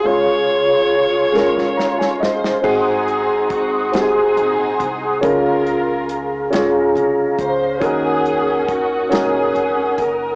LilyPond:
<<
  \new Staff \with { instrumentName = "Tonewheel organ" } { \time 6/8 \key des \major \tempo 4. = 46 << { <f'' c'''>2. | <ges'' c''' ees'''>2. | <f'' bes''>2. | <ges'' ees'''>2. | } \\ { aes'2. | aes'2.~ | aes'2. | bes'2. | } >> }
  \new Staff \with { instrumentName = "Alto saxophone" } { \time 6/8 \key des \major des''2~ des''8 r8 | r2. | r2. | r2. | }
  \new Staff \with { instrumentName = "String section" } { \time 6/8 \key des \major << { des''2~ des''8 c''8 | aes'4 ges'8 aes'4. | bes'4. r4 c''8 | aes'4 ges'8 aes'4 bes'8 | } \\ { <f' aes'>2~ <f' aes'>8 r8 | <c' ees'>4. <c' ees'>4. | f'4. r4. | des'4. des'4. | } >> }
  \new Staff \with { instrumentName = "Grand piano" } { \time 6/8 \key des \major <aes des' f' aes'>4~ <aes des' f' aes'>16 r16 <aes des' f' bes'>4~ <aes des' f' bes'>16 r16 | <c' ees' ges' aes'>4~ <c' ees' ges' aes'>16 r16 <c' ees' ges' g' aes'>4~ <c' ees' ges' g' aes'>16 r16 | <des' ees' f' aes' bes'>4~ <des' ees' f' aes' bes'>16 r16 <des' f' aes' des''>4~ <des' f' aes' des''>16 r16 | <des' ees' ges' bes'>4~ <des' ees' ges' bes'>16 r16 <des' ees' ges' bes'>4~ <des' ees' ges' bes'>16 r16 | }
  \new Staff \with { instrumentName = "Grand piano" } { \clef bass \time 6/8 \key des \major des4. r8 bes''16 aes''16 ees''8 | aes,4. r4. | des4. r4. | ees4. r4. | }
  \new Staff \with { instrumentName = "Upright bass" } { \clef bass \time 6/8 \key des \major r2. | aes,,4. ees,8 bes,,8 c,8 | des,4. aes,8 c,8 des,8 | ees,4. bes,8 f,,8 ges,,8 | }
  \new DrumStaff \with { instrumentName = "Drums" } \drummode { \time 6/8 r4. sn16 sn16 sn16 sn16 sn16 sn16 | <cymc bd>8 hh8 <hh bd>8 <hh sn>8 hh8 <hh bd>8 | <hh bd>8 hh8 hh8 <hh sn>8 hh8 <hh bd>8 | <hh bd>8 hh8 <hh bd>8 <hh sn>8 hh8 <hh bd>8 | }
>>